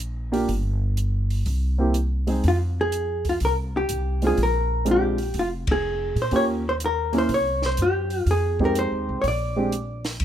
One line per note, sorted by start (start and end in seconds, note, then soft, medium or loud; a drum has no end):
0.00 0.45 A#1 medium
0.00 closed hi-hat medium
0.32 0.47 A#3 medium
0.32 0.47 D4 medium
0.32 0.47 F4 medium
0.32 0.47 G4 medium
0.32 open hi-hat soft
0.48 1.42 G1 medium
0.48 kick soft
0.48 open hi-hat soft
0.97 closed hi-hat soft
1.30 open hi-hat soft
1.46 2.40 C2 medium
1.46 kick soft
1.46 open hi-hat soft
1.78 1.93 A#3 medium
1.78 1.93 C4 medium
1.78 1.94 E4 medium
1.78 1.94 G4 medium
1.94 closed hi-hat medium
2.27 2.42 G#3 medium
2.27 2.42 C4 medium
2.27 2.42 D#4 medium
2.27 2.42 G#4 medium
2.27 open hi-hat soft
2.44 3.37 F2 medium
2.44 kick soft
2.44 open hi-hat soft
2.48 2.56 F4 medium
2.81 3.29 G#4 medium
2.92 closed hi-hat medium
3.25 kick soft
3.25 open hi-hat soft
3.29 3.34 F4 medium
3.40 3.86 C2 medium
3.40 kick soft
3.40 open hi-hat soft
3.45 3.53 A#4 medium
3.77 4.21 G4 medium
3.89 4.35 C2 medium
3.89 closed hi-hat medium
4.22 4.36 G#3 medium
4.22 4.37 C4 medium
4.22 4.37 D4 medium
4.22 4.37 F4 medium
4.22 open hi-hat soft
4.27 4.41 G#4 medium
4.38 5.31 A#1 medium
4.38 kick soft
4.38 open hi-hat soft
4.43 4.86 A#4 medium
4.85 5.15 G#3 medium
4.85 5.16 C4 medium
4.85 5.16 D4 medium
4.85 5.16 F4 medium
4.85 closed hi-hat medium
4.91 5.39 G4 medium
5.18 open hi-hat soft
5.34 6.12 F1 medium
5.34 kick soft
5.34 open hi-hat soft
5.39 5.48 F4 medium
5.67 kick medium
5.67 ride medium
5.72 6.20 G#4 medium
6.16 6.31 A#2 medium
6.16 open hi-hat soft
6.22 6.35 C5 medium
6.31 7.25 D#2 medium
6.31 6.62 A#3 medium
6.31 6.62 C#4 medium
6.31 6.62 F4 medium
6.31 6.62 G4 medium
6.31 kick soft
6.31 open hi-hat soft
6.36 6.44 C#5 loud
6.69 6.74 C5 medium
6.80 closed hi-hat medium
6.86 7.14 A#4 medium
7.12 7.27 A#3 medium
7.12 7.28 C#4 medium
7.12 7.28 E4 medium
7.12 7.28 A#4 medium
7.12 open hi-hat soft
7.18 7.32 C5 loud
7.29 7.75 C2 medium
7.29 kick soft
7.29 open hi-hat soft
7.34 7.66 C#5 loud
7.62 7.80 C5 medium
7.62 snare soft
7.77 8.23 F#2 medium
7.77 closed hi-hat medium
7.82 8.30 G4 medium
8.10 open hi-hat soft
8.26 8.87 F2 medium
8.26 kick soft
8.26 open hi-hat soft
8.31 8.62 G#4 medium
8.59 9.21 G#3 medium
8.59 9.21 C4 medium
8.59 9.21 D#4 medium
8.59 9.21 G4 medium
8.59 kick soft
8.65 8.78 A#4 medium
8.75 9.21 C5 medium
8.75 closed hi-hat medium
8.92 9.07 D#2 medium
9.09 9.23 C2 medium
9.22 10.17 A#1 medium
9.22 9.25 C#5 medium
9.22 kick soft
9.22 open hi-hat soft
9.28 10.03 D5 medium
9.56 9.71 G#3 medium
9.56 9.71 C4 medium
9.56 9.71 D4 medium
9.56 9.71 G4 medium
9.72 closed hi-hat medium
10.05 snare soft
10.05 open hi-hat soft
10.20 10.25 D#2 medium
10.20 kick soft
10.20 ride medium